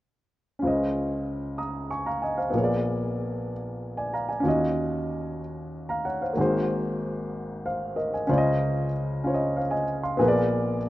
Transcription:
0.59 2.50 C#3 soft
0.59 2.49 C#4 soft
0.59 2.50 F4 soft
0.63 2.51 C#2 soft
0.63 1.58 C5 soft
0.63 1.59 D#5 medium
1.58 1.89 A#5 soft
1.58 1.88 D#6 soft
1.90 2.05 G#5 soft
1.90 2.06 C#6 soft
2.06 2.22 F5 soft
2.06 2.21 A#5 soft
2.22 2.38 D#5 soft
2.22 2.37 G#5 soft
2.37 2.68 C5 soft
2.37 2.68 F5 soft
2.50 4.41 A#1 soft
2.50 4.41 A#2 soft
2.50 4.40 B3 medium
2.50 4.41 G#4 soft
2.54 4.42 A#4 soft
2.54 2.62 C#5 soft
2.64 3.53 D5 medium
3.97 4.13 D5 soft
3.97 4.13 G#5 soft
4.14 4.29 F5 soft
4.14 4.29 A#5 soft
4.29 4.60 D5 soft
4.29 4.59 G#5 soft
4.40 6.32 D#2 medium
4.40 6.30 C#4 medium
4.40 6.32 F4 soft
4.44 6.32 D#3 medium
4.44 6.33 F#4 soft
4.44 5.41 D#5 medium
5.89 6.05 F5 soft
5.89 6.04 A#5 soft
6.05 6.20 C#5 soft
6.05 6.20 F#5 soft
6.22 6.39 C5 soft
6.22 6.52 F5 soft
6.33 8.24 G#1 medium
6.33 8.24 G#2 medium
6.33 8.23 A#3 medium
6.33 8.24 F#4 soft
6.38 8.25 G#4 soft
6.38 7.64 C5 medium
7.66 7.96 C5 soft
7.66 7.96 F5 soft
7.96 8.12 A#4 soft
7.96 8.12 D#5 soft
8.14 8.36 D#5 soft
8.14 8.44 G#5 soft
8.27 10.16 C#2 soft
8.27 10.16 C#3 medium
8.27 8.86 C#4 medium
8.27 8.87 F4 medium
8.27 8.87 C5 medium
8.31 8.36 D5 medium
8.38 8.91 D#5 medium
9.24 9.82 C#4 medium
9.24 9.83 F4 soft
9.24 9.56 C5 soft
9.24 9.32 C#5 soft
9.34 9.61 D#5 medium
9.56 9.72 C5 soft
9.56 9.71 F5 soft
9.71 10.02 D#5 soft
9.71 10.02 G#5 medium
10.03 10.34 F5 soft
10.03 10.34 C6 soft
10.17 10.89 A#1 soft
10.17 10.89 A#2 medium
10.17 10.77 B3 medium
10.17 10.77 G#4 medium
10.17 10.78 A#4 medium
10.21 10.27 B4 medium
10.28 10.82 D5 medium

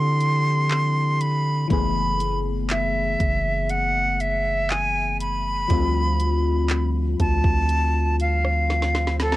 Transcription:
0.00 1.66 D3 loud
0.00 1.65 F3 medium
0.00 1.66 C4 medium
0.00 1.67 E4 medium
0.00 1.67 G4 medium
0.00 1.23 C6 loud
0.00 downlifter medium
0.21 closed hi-hat soft
0.71 clap loud
1.21 1.70 B5 loud
1.21 closed hi-hat medium
1.68 3.16 F#1 loud
1.68 5.65 E3 medium
1.68 5.66 A3 medium
1.68 5.67 B3 medium
1.68 2.39 B5 loud
1.68 kick loud
1.68 closed hi-hat medium
1.73 5.68 G#4 medium
2.20 closed hi-hat medium
2.70 3.72 E5 medium
2.70 clap loud
2.70 closed hi-hat medium
3.20 5.66 F#1 loud
3.20 kick medium
3.20 closed hi-hat medium
3.69 4.22 F#5 loud
3.69 closed hi-hat medium
4.20 4.72 E5 medium
4.20 closed hi-hat soft
4.70 5.20 G#5 loud
4.70 clap loud
5.20 6.89 B5 loud
5.20 closed hi-hat medium
5.68 7.16 D2 loud
5.68 9.37 F3 medium
5.68 9.37 G3 medium
5.68 9.37 C4 medium
5.68 kick loud
5.68 closed hi-hat medium
5.73 9.37 F4 medium
6.20 closed hi-hat medium
6.69 clap loud
6.69 closed hi-hat medium
7.20 7.44 D2 loud
7.20 8.16 A5 loud
7.20 kick loud
7.20 closed hi-hat medium
7.44 9.37 D2 medium
7.44 kick medium
7.69 closed hi-hat medium
8.20 9.17 F5 medium
8.20 closed hi-hat medium
8.45 cross-stick medium
8.70 snare medium
8.82 snare medium
8.95 snare medium
9.07 snare medium
9.20 9.37 A4 loud
9.20 snare medium
9.20 closed hi-hat medium
9.32 snare medium

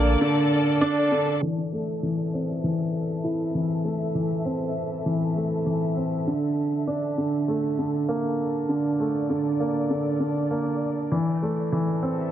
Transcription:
0.00 0.16 A#1 medium
0.00 0.21 D3 medium
0.00 1.44 A3 medium
0.00 1.44 A#3 loud
0.00 11.12 A4 medium
0.00 3.16 D5 medium
0.21 0.50 D3 medium
0.81 1.10 D4 loud
1.12 1.41 D3 medium
1.42 1.60 E3 medium
1.70 2.01 A3 medium
1.70 8.21 E5 medium
2.03 2.32 E3 medium
2.34 2.62 C4 medium
2.64 2.92 E3 medium
3.24 3.53 E4 medium
3.55 3.83 E3 medium
3.84 4.13 A3 medium
4.15 4.44 E3 medium
4.45 4.74 C4 medium
5.06 5.23 E3 medium
5.36 5.65 A3 medium
5.66 5.95 E3 medium
5.97 6.26 C4 medium
6.27 6.56 D3 medium
6.87 7.16 D4 medium
7.18 7.47 D3 medium
7.48 7.77 A3 medium
7.79 8.07 D3 medium
8.08 8.38 A#3 medium
8.46 12.32 D5 medium
8.69 8.87 D3 medium
9.00 9.29 A3 medium
9.30 9.59 D3 medium
9.60 9.89 A#3 medium
9.90 10.19 D3 medium
10.20 10.49 D3 medium
10.51 10.80 A#3 medium
11.11 11.29 E3 medium
11.42 11.71 A3 medium
11.72 12.01 E3 medium
11.96 12.32 A4 medium
12.03 12.32 C4 medium
12.20 12.32 E5 medium

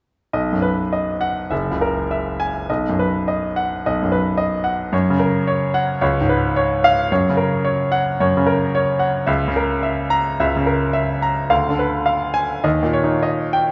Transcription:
0.33 1.48 B1 soft
0.33 0.81 D#5 soft
0.53 0.84 F#2 soft
0.62 1.10 B4 soft
0.93 1.40 D#5 soft
1.21 1.51 F#5 soft
1.50 2.64 F#1 soft
1.50 1.98 E5 soft
1.71 2.02 C#2 soft
1.81 2.27 A#4 soft
2.11 2.57 E5 soft
2.40 2.68 G#5 medium
2.69 3.82 B1 soft
2.69 3.16 D#5 soft
2.89 3.20 F#2 soft
2.99 3.46 B4 soft
3.28 3.74 D#5 soft
3.56 4.01 F#5 soft
3.86 4.90 B1 soft
3.86 4.28 D#5 soft
4.02 4.31 F#2 soft
4.12 4.54 B4 soft
4.37 4.81 D#5 soft
4.64 4.92 F#5 soft
4.92 5.98 F#2 medium
4.92 5.36 C#5 soft
5.10 5.39 C#3 soft
5.19 5.63 A#4 soft
5.47 5.90 C#5 soft
5.74 6.01 F#5 medium
6.01 7.07 C#2 medium
6.01 6.45 C#5 soft
6.21 6.49 G#2 soft
6.29 6.73 B4 soft
6.56 7.00 C#5 soft
6.84 7.11 F5 medium
7.12 8.16 F#2 soft
7.12 7.54 C#5 soft
7.30 7.57 C#3 soft
7.37 7.80 A#4 soft
7.64 8.08 C#5 soft
7.92 8.35 F#5 medium
8.20 9.25 F#2 soft
8.20 8.63 C#5 soft
8.37 8.66 C#3 soft
8.46 8.89 A#4 soft
8.75 9.17 C#5 soft
8.99 9.27 F#5 soft
9.27 10.35 C#2 medium
9.27 9.72 E5 soft
9.48 9.77 C#3 soft
9.56 10.00 A#4 soft
9.83 10.27 E5 soft
10.10 10.55 A#5 medium
10.40 11.48 C#2 soft
10.40 10.84 E5 soft
10.57 10.86 C#3 soft
10.66 11.11 A#4 soft
10.93 11.39 E5 soft
11.22 11.50 A#5 soft
11.50 12.61 D2 soft
11.50 11.95 F5 soft
11.69 11.99 D3 soft
11.79 12.24 B4 soft
12.06 12.52 F5 soft
12.34 12.64 G#5 medium
12.64 13.72 D#2 medium
12.64 13.12 D#5 soft
12.83 13.16 A#2 soft
12.93 13.42 C#5 soft
13.04 13.36 D#4 soft
13.23 13.71 D#5 soft
13.53 13.72 G5 medium

